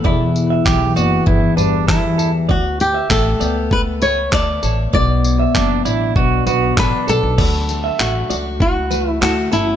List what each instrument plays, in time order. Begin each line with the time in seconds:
Already playing: steel-string acoustic guitar E3 B3 C#4 E4
0.04 upright bass E1, steel-string acoustic guitar E2, nylon-string guitar E4, clean electric guitar D5, kick
0.36 tambourine
0.50 clean electric guitar E5
0.66 upright bass B1, steel-string acoustic guitar E3, pedal steel guitar G4, kick, clap
0.96 upright bass F#1, steel-string acoustic guitar B3, pedal steel guitar F#4, clean electric guitar D5, tambourine
1.26 upright bass G1, steel-string acoustic guitar E2, pedal steel guitar E4, kick
1.57 upright bass G1, steel-string acoustic guitar G3, pedal steel guitar D4, clean electric guitar B4, tambourine
1.87 steel-string acoustic guitar E3, pedal steel guitar E4, clean electric guitar A4, kick, clap
2.18 clean electric guitar A4, tambourine
2.49 upright bass D2, nylon-string guitar F#4, clean electric guitar D5, kick
2.80 nylon-string guitar G4, tambourine
2.94 clean electric guitar E5
3.10 upright bass A1, steel-string acoustic guitar A3, nylon-string guitar A4, kick, clap
3.40 upright bass C#2, steel-string acoustic guitar B3, clean electric guitar D5, tambourine
3.71 nylon-string guitar B4, kick
4.01 steel-string acoustic guitar A3, clean electric guitar B4, nylon-string guitar C#5, tambourine
4.31 upright bass D2, steel-string acoustic guitar A3, clean electric guitar A4, nylon-string guitar D5, kick, clap
4.63 upright bass A1, clean electric guitar A4, tambourine
4.93 upright bass B1, steel-string acoustic guitar B2, clean electric guitar D5, nylon-string guitar D5, kick
5.24 tambourine
5.40 clean electric guitar E5
5.55 upright bass F#1, steel-string acoustic guitar F#3, pedal steel guitar D4, kick, clap
5.85 upright bass A1, steel-string acoustic guitar D4, pedal steel guitar E4, clean electric guitar D5, tambourine
6.16 upright bass B1, steel-string acoustic guitar B2, pedal steel guitar F#4, kick
6.47 upright bass B1, steel-string acoustic guitar B3, pedal steel guitar F#4, clean electric guitar B4, tambourine
6.77 upright bass A1, steel-string acoustic guitar F#3, pedal steel guitar D4, clean electric guitar A4, nylon-string guitar B4, kick, clap
7.07 upright bass B1, clean electric guitar A4, nylon-string guitar A4, tambourine
7.23 upright bass B1
7.38 upright bass D2, steel-string acoustic guitar F#4, clean electric guitar D5, kick, crash
7.69 steel-string acoustic guitar A3, tambourine
7.84 clean electric guitar E5
8.00 upright bass A1, steel-string acoustic guitar A3, nylon-string guitar F#4, clap
8.30 upright bass C#2, steel-string acoustic guitar F#4, clean electric guitar D5, tambourine
8.60 nylon-string guitar F#4, kick
8.91 steel-string acoustic guitar A3, clean electric guitar B4, tambourine
9.10 nylon-string guitar E4
9.21 upright bass D2, steel-string acoustic guitar A3, nylon-string guitar F#4, clean electric guitar A4, clap
9.52 upright bass G1, steel-string acoustic guitar C#4, nylon-string guitar E4, clean electric guitar A4, tambourine